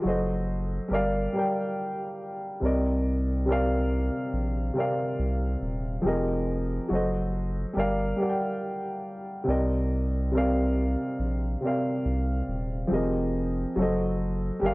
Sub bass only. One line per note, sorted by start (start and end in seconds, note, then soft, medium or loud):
0.05 0.80 F#1 loud
0.91 1.28 G1 loud
2.62 4.10 C2 loud
4.33 4.71 A#1 medium
5.19 5.56 C2 loud
5.62 5.99 D#1 medium
6.04 6.79 F1 loud
6.90 7.65 F#1 loud
7.76 8.14 G1 medium
9.48 10.96 C2 loud
11.19 11.56 A#1 medium
12.05 12.42 C2 loud
12.48 12.85 D#1 medium
12.91 13.66 F1 loud
13.76 14.51 F#1 loud
14.62 14.74 G1 medium